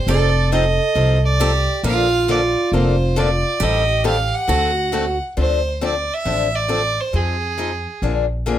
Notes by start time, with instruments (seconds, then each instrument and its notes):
Already playing: violin C5
0.07 upright bass F1, steel-string acoustic guitar F3 C4 D#4 A4, violin D5
0.52 steel-string acoustic guitar F3 C4 D#4 A4, violin D#5
0.95 upright bass C2, steel-string acoustic guitar F3 C4 D#4 A4
1.25 violin D5
1.40 steel-string acoustic guitar F3 C4 D#4 G4 A4
1.83 upright bass A#1, steel-string acoustic guitar D3 F3 A#3 D4 F4 A4, violin F5
2.28 steel-string acoustic guitar D3 F3 A#3 D4 A4, violin D5
2.72 upright bass F1, steel-string acoustic guitar D3 F3 A#3 D4 A4, violin C5
3.16 steel-string acoustic guitar D3 F3 A#3 D4 A4, violin D5
3.60 upright bass A1, steel-string acoustic guitar D#3 G3 C4 G4 A4, violin D#5
4.04 steel-string acoustic guitar D#3 G3 C4 G4 A4, violin F5
4.35 violin F#5
4.47 upright bass D2, steel-string acoustic guitar D3 A3 C4 F#4 A4
4.92 steel-string acoustic guitar D3 A3 C4 F#4 A4
5.37 upright bass D2, steel-string acoustic guitar D3 F3 C4 D4 A4, violin C5
5.81 steel-string acoustic guitar D3 F3 C4 D4 A4, violin D5
6.14 violin E5
6.25 upright bass A1, steel-string acoustic guitar D3 F3 C4 D4 A4
6.56 violin D5
6.68 steel-string acoustic guitar D3 F3 C4 D4 A4
7.01 violin C5
7.13 upright bass F2, steel-string acoustic guitar F3 C4 D#4 G#4, violin G#4
7.58 steel-string acoustic guitar F3 C4 D#4 G#4
8.02 upright bass A#1, steel-string acoustic guitar D3 F3 A#3 D4 G#4
8.46 steel-string acoustic guitar D3 F3 A#3 D4 G#4